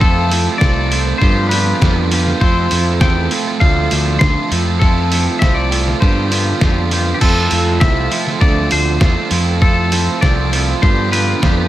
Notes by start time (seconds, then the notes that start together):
Already playing: F2
0.00 F3 A3 C4 E4 F4 A4, kick
0.30 F3 A3 C4 E4 F4 A4, open hi-hat
0.58 C2 F3 A3 C4 E4 A4 D5, kick, snare
0.62 F4
0.90 F3 A3 C4 E4 F4 A4, open hi-hat
1.18 G2 D3 F3 B3 C4 D4 F4 C5, kick
1.22 F4 G4
1.49 G2 D3 F3 B3 C4 F4 G4 B4, open hi-hat
1.53 D4 F4
1.79 F2 G2 D3 F3 B3 C4 D4 F4 G4, kick, snare
2.10 G2 D3 F3 B3 C4 D4 F4 G4, open hi-hat
2.27 snare
2.40 F2 F3 A3 C4 E4 F4 A4 C5, kick
2.70 F2 F3 A3 C4 E4 F4 A4, open hi-hat
3.00 E2 F3 A3 C4 E4 F4 A4 G5, kick, snare
3.30 F3 A3 C4 E4 F4 A4, open hi-hat
3.60 D2 D3 F3 A3 C4 D4 F4 A4 F5, kick
3.91 D2 D3 F3 A3 C4 D4 F4 A4, open hi-hat
4.19 D2 D3 F3 A3 C4 D4 A4 C6, kick, snare
4.23 F4
4.50 F2 F3 A3 C4 E4 F4 A4, open hi-hat
4.79 F3 A3 C4 E4 F4 A4, kick
5.10 F3 A3 C4 E4 F4 A4, open hi-hat
5.39 C2 F3 A3 C4 E4 F4 A4 E5, kick, snare
5.55 D5
5.70 F3 A3 C4 E4 F4 A4, open hi-hat
5.88 snare
6.00 G2 D3 F3 B3 C4 D4 F4 G4 C5, kick
6.30 G2 D3 F3 B3 C4 D4 F4 G4, open hi-hat
6.60 F2 G2 D3 F3 B3 C4 D4 F4 G4, kick, snare
6.91 G2 D3 F3 B3 C4 D4 F4 G4, open hi-hat
7.14 G4
7.20 F2 F3 A3 C4 E4 F4 A4, kick, crash
7.50 F2 F3 A3 C4 E4 F4 A4, open hi-hat
7.80 C2 F3 A3 C4 E4 F4 A4 E5, kick, snare
8.09 F3 A3 C4 E4 F4 A4, open hi-hat
8.27 snare
8.40 D2 D3 F3 A3 C4 D4 F4 A4 D5, kick
8.70 D2 D3 F3 A3 C4 D4 F4 A4 C5, open hi-hat
9.00 E2 D3 F3 A3 C4 D4 F4 A4, kick, snare
9.31 F2 F3 A3 C4 E4 F4 A4, open hi-hat
9.61 F3 A3 C4 E4 F4 A4, kick
9.91 F3 A3 C4 E4 F4 A4, open hi-hat
10.21 C2 F3 A3 C4 E4 F4 A4 D5, kick, snare
10.51 F3 A3 C4 E4 F4 A4, open hi-hat
10.81 G2 D3 F3 B3 C4 D4 F4 G4 C5, kick
11.10 G2 D3 F3 B3 C4 D4 F4 G4 B4, open hi-hat
11.40 F2 G2 D3 F3 B3 C4 D4 F4 G4, kick, snare